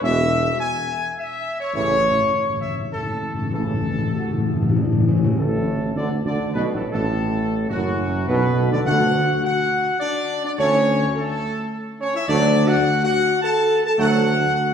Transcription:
0.01 tuba E1, trombone section B2 E3, french horn section G#3 E4, trumpet section E5
0.59 trumpet section G#5
1.18 trumpet section E5
1.61 trumpet section C#5
1.73 tuba A1, timpani A2, trombone section C#3 E3, french horn section A3 E4, trumpet section C#5
1.82 timpani A2
1.89 timpani A2
1.97 timpani A2
2.05 timpani A2
2.12 timpani A2
2.19 timpani A2
2.28 timpani A2
2.35 timpani A2
2.42 timpani A2
2.49 timpani A2
2.57 timpani A2
2.61 timpani A2, trumpet section E5
2.72 timpani A2
2.79 timpani A2
2.87 timpani A2, trumpet section A4
2.95 timpani A2
3.03 timpani A2
3.10 timpani A2
3.18 timpani A2
3.26 timpani A2
3.34 timpani A2
3.41 timpani A2
3.50 tuba A1, timpani A2, trombone section C#3 E3, french horn section A3 E4, trumpet section A4
3.58 timpani A2
3.65 timpani A2
3.74 timpani A2
3.82 timpani A2
3.91 timpani A2
3.99 timpani A2
4.07 timpani A2
4.14 timpani A2, french horn section F#4
4.22 timpani A2
4.31 timpani A2
4.38 timpani A2
4.45 timpani A2, french horn section E4
4.54 timpani A2
4.62 timpani A2
4.69 timpani A2
4.76 timpani A2, french horn section D4
4.85 timpani A2
4.92 timpani A2
5.00 timpani A2
5.06 timpani A2, french horn section C#4
5.17 timpani A2
5.24 timpani A2
5.36 tuba A1, trombone section A2, timpani D3, french horn section A3, trumpet section A4
5.96 tuba D2, trombone section D3, french horn section D4, trumpet section D5
6.25 tuba D2, trombone section D3, french horn section D4, trumpet section D5
6.53 tuba B1, trombone section B2, french horn section B3, trumpet section B4
6.73 tuba A1, trombone section A2, french horn section A3, trumpet section A4
6.91 tuba A1, trombone section A2, french horn section A3, trumpet section A4
7.69 tuba F#1, trombone section F#2, french horn section F#3, trumpet section F#4
8.27 tuba B1, trombone section B2, french horn section B3, trumpet section B4
8.70 tuba D2, trombone section D3, french horn section D4, trumpet section D5
8.85 tuba D2, timpani D3, trombone section D3 A3, french horn section F#4, trumpet section F#5
9.43 french horn section F#4, trumpet section F#5
9.99 french horn section D4, trumpet section D5
10.44 french horn section D4, trumpet section D5
10.57 tuba D2, trombone section A2 A3, french horn section C#4, trumpet section C#5
11.14 french horn section A3, trumpet section A4
12.00 french horn section C#4, trumpet section C#5
12.14 french horn section E4, trumpet section E5
12.28 tuba D2, trombone section F#3 A3, french horn section D4, trumpet section D5
12.66 french horn section F#4, trumpet section F#5
13.03 french horn section F#4, trumpet section F#5
13.42 french horn section A4, trumpet section A5
13.84 french horn section A4, trumpet section A5
13.98 tuba D2, trombone section F#3 A3, french horn section F#4, trumpet section F#5

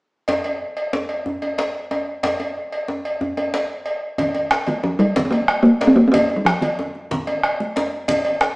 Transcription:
0.28 cowbell, djembe slap, djembe bass
0.44 cowbell, djembe tone
0.77 cowbell
0.93 djembe slap, djembe tone
1.09 cowbell
1.26 djembe bass
1.42 cowbell, djembe tone
1.58 cowbell, djembe slap
1.91 cowbell, djembe tone
2.23 cowbell, djembe slap, djembe bass
2.40 cowbell, djembe tone
2.72 cowbell
2.88 djembe tone
3.05 cowbell
3.21 djembe bass
3.37 cowbell, djembe tone
3.54 cowbell, djembe slap
3.86 cowbell
4.18 bombo low, cowbell, djembe bass, low conga
4.34 cowbell, djembe tone
4.51 bombo rim, djembe slap
4.66 talking drum D#3, cowbell, high conga
4.83 talking drum F3, djembe tone
4.99 talking drum G3, cowbell, djembe slap, high conga
5.16 bombo low, djembe slap, djembe bass, low conga
5.25 talking drum C4
5.31 talking drum A#3, cowbell, djembe tone, high conga
5.48 bombo rim, cowbell
5.63 talking drum A#3, high conga
5.81 cowbell, djembe slap, djembe tone
5.87 talking drum C4
5.96 talking drum A#3
6.08 talking drum C4
6.12 talking drum A#3, bombo low, cowbell, low conga, djembe bass
6.30 djembe tone
6.36 talking drum G3
6.45 talking drum F3, bombo rim, djembe slap
6.61 talking drum D#3, cowbell, high conga
6.79 djembe tone
6.95 djembe slap, high conga
7.11 bombo low, djembe slap, low conga, djembe bass
7.27 cowbell, djembe tone, high conga
7.43 bombo rim, cowbell
7.60 high conga
7.76 cowbell, djembe slap, djembe tone
8.08 bombo low, cowbell, djembe bass, low conga
8.24 cowbell, djembe tone
8.41 bombo rim, djembe slap

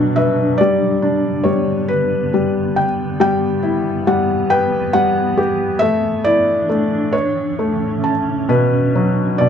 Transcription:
Already playing: ambient pad B2 F#3 D4, felt piano B2 F#3 D4 F#5
0.16 felt piano B4 E5
0.58 ambient pad G2 D3 B3, felt piano G3 D5
1.02 felt piano D4
1.44 felt piano G3 C#5
1.88 felt piano B4
2.34 felt piano G3
2.76 felt piano G5
3.20 ambient pad E3 B3, felt piano G3 G5
3.63 felt piano E4
4.07 felt piano G3 F#5
4.50 felt piano B4 G5
4.93 felt piano G3 F#5
5.37 felt piano G4
5.79 ambient pad A2 E3 D4, felt piano A3 E5
6.24 felt piano E4 D5
6.69 felt piano A3
7.12 ambient pad C#4, felt piano C#5
7.59 felt piano A3
8.04 felt piano A5
8.49 ambient pad B2 F#3 D4, felt piano B2 B4
8.95 felt piano F#3
9.38 felt piano B2 D5

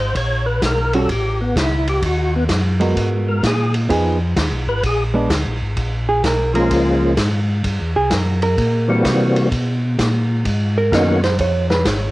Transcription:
Already playing: tonewheel organ G#1
0.00 tonewheel organ C5
0.15 tonewheel organ A#1 C#5, kick, ride
0.46 tonewheel organ B4
0.62 tonewheel organ B1 A#4, kick, snare, hi-hat pedal, ride
0.93 hollow-body jazz guitar G3 C#4 F#4, tonewheel organ A4, ride
1.08 tonewheel organ A1 G4, kick, ride
1.41 tonewheel organ B3
1.56 tonewheel organ C#2, kick, snare, hi-hat pedal, ride
1.60 tonewheel organ E4
1.87 tonewheel organ G4, ride
2.02 tonewheel organ D#2 F#4, kick, ride
2.36 tonewheel organ B3
2.49 tonewheel organ F#2, kick, snare, hi-hat pedal, ride
2.80 hollow-body jazz guitar G#3 B3 F#4 A#4, ride
2.96 tonewheel organ G#2, kick, ride
3.28 tonewheel organ A#4
3.43 tonewheel organ A#2 G#4, kick, snare, hi-hat pedal, ride
3.74 ride
3.89 tonewheel organ F2, hollow-body jazz guitar F3 B3 D#4 G#4, kick, ride
4.36 tonewheel organ D#2, kick, snare, hi-hat pedal, ride
4.52 tonewheel organ B1
4.67 tonewheel organ G#1 B4
4.83 tonewheel organ A#1 G#4, kick, ride
5.14 hollow-body jazz guitar G#3 B3 D4
5.30 tonewheel organ D2, kick, snare, hi-hat pedal, ride
5.46 tonewheel organ A#1
5.62 tonewheel organ G#1
5.77 tonewheel organ A#1, kick, ride
6.09 hollow-body jazz guitar G#4
6.24 tonewheel organ B1, hollow-body jazz guitar A#4, kick, snare, hi-hat pedal, ride
6.54 tonewheel organ F3 G#3 A#3 C#4 F4, hollow-body jazz guitar A#4, ride
6.70 tonewheel organ C#2, kick, ride
7.17 tonewheel organ G#2, kick, snare, hi-hat pedal, ride
7.64 tonewheel organ G2, kick, ride
7.81 tonewheel organ E2
7.96 tonewheel organ C2, hollow-body jazz guitar G#4
8.11 tonewheel organ F#2, hollow-body jazz guitar A#4, kick, snare, hi-hat pedal, ride
8.42 hollow-body jazz guitar A#4, ride
8.58 tonewheel organ A#2, kick, ride
8.88 tonewheel organ E3 G3 A#3 C4 F#4
9.04 tonewheel organ C3, kick, snare, hi-hat pedal, ride
9.36 ride
9.51 tonewheel organ B2, kick, ride
9.99 tonewheel organ A#2, kick, snare, hi-hat pedal, ride
10.45 tonewheel organ G#2, kick, ride
10.78 hollow-body jazz guitar A#4
10.92 tonewheel organ F#2 D#3 A#3 B3 C#4 F#4, hollow-body jazz guitar D#5, kick, snare, hi-hat pedal, ride
11.23 hollow-body jazz guitar C5, snare, ride
11.39 tonewheel organ F2, hollow-body jazz guitar C#5, kick, ride
11.70 hollow-body jazz guitar B4, snare
11.85 tonewheel organ G#1, hollow-body jazz guitar C#5, kick, snare, hi-hat pedal, ride

